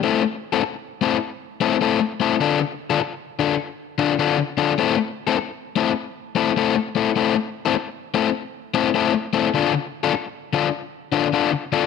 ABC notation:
X:1
M:4/4
L:1/16
Q:"Swing" 1/4=101
K:Am
V:1 name="Overdriven electric guitar"
[A,CEA] z2 [A,CEA] z2 [A,CEA] z3 [A,CEA] z [A,CEA] z [A,CEA] z | [D,DFA] z2 [D,DFA] z2 [D,DFA] z3 [D,DFA] z [D,DFA] z [D,DFA] z | [A,CEA] z2 [A,CEA] z2 [A,CEA] z3 [A,CEA] z [A,CEA] z [A,CEA] z | [A,CEA] z2 [A,CEA] z2 [A,CEA] z3 [A,CEA] z [A,CEA] z [A,CEA] z |
[D,DFA] z2 [D,DFA] z2 [D,DFA] z3 [D,DFA] z [D,DFA] z [D,DFA] z |]